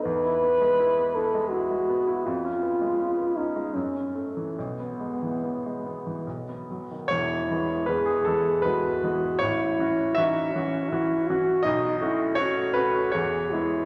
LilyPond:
<<
  \new Staff \with { instrumentName = "French horn" } { \time 3/4 \key e \major \tempo 4 = 79 b'4. a'8 fis'4 | eis'4. dis'8 cis'8 r8 | b2~ b8 r8 | e'4 gis'4 fis'4 |
e'4 dis'8 cis'8 e'8 fis'8 | dis'8 e'8 fis'4 gis'8 e'8 | }
  \new Staff \with { instrumentName = "Grand piano" } { \time 3/4 \key e \major r2. | r2. | r2. | cis''4 b'16 gis'16 a'8 b'4 |
cis''4 e''4. r8 | dis''4 cis''8 b'8 cis''4 | }
  \new Staff \with { instrumentName = "Grand piano" } { \time 3/4 \key e \major e,16 e'16 b16 gis16 e'16 b16 e'16 gis16 e'16 gis16 b16 e'16 | eis,16 cis'16 b16 gis16 cis'16 b16 cis'16 gis16 fis,16 cis'16 a16 e16 | b,,16 b16 gis16 e16 b16 gis16 b16 e16 b,,16 b16 fis16 dis16 | <e,, e,>8 <e gis b>8 <e gis b>8 <e gis b>8 <e gis b>8 <e gis b>8 |
a,,8 <e cis' fis'>8 <e cis' fis'>8 <e cis' fis'>8 <e cis' fis'>8 <e cis' fis'>8 | b,,8 <a cis' fis'>8 <a cis' fis'>8 <a cis' fis'>8 e,8 <gis b e'>8 | }
>>